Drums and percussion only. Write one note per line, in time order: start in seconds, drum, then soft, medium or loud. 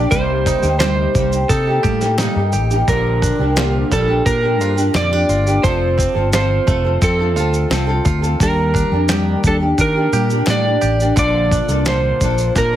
0.11 kick loud
0.11 shaker medium
0.46 kick medium
0.46 clap medium
0.46 shaker medium
0.63 shaker soft
0.80 snare loud
0.80 clap loud
0.80 shaker medium
1.15 kick medium
1.15 shaker medium
1.32 shaker soft
1.49 kick medium
1.49 shaker medium
1.84 kick medium
1.84 shaker soft
2.01 snare soft
2.01 shaker soft
2.18 snare loud
2.18 clap medium
2.18 shaker medium
2.52 shaker soft
2.71 shaker soft
2.88 kick loud
2.88 shaker medium
3.22 kick medium
3.22 shaker medium
3.56 snare loud
3.56 clap loud
3.56 shaker medium
3.92 kick medium
3.92 shaker medium
4.26 kick medium
4.26 shaker medium
4.61 shaker soft
4.78 shaker soft
4.95 snare loud
4.95 clap medium
4.95 shaker medium
5.29 shaker soft
5.47 shaker soft
5.64 kick loud
5.64 shaker medium
5.99 kick medium
5.99 shaker medium
6.33 snare loud
6.33 clap loud
6.33 shaker medium
6.67 kick medium
6.67 shaker soft
7.02 kick loud
7.02 shaker medium
7.37 shaker soft
7.54 shaker soft
7.71 snare loud
7.71 clap medium
7.71 shaker medium
8.05 kick medium
8.05 shaker soft
8.24 shaker soft
8.40 kick loud
8.40 shaker medium
8.75 kick medium
8.75 shaker medium
9.08 snare loud
9.08 clap medium
9.08 shaker medium
9.44 kick medium
9.44 shaker medium
9.78 kick medium
9.78 shaker medium
10.13 shaker soft
10.30 shaker soft
10.46 snare loud
10.46 clap medium
10.46 shaker medium
10.82 shaker soft
11.00 shaker soft
11.17 kick loud
11.17 shaker medium
11.52 kick medium
11.52 shaker medium
11.69 shaker soft
11.86 snare loud
11.86 clap loud
11.86 shaker medium
12.21 kick medium
12.21 shaker medium
12.38 shaker soft
12.56 kick medium
12.56 snare medium
12.56 shaker medium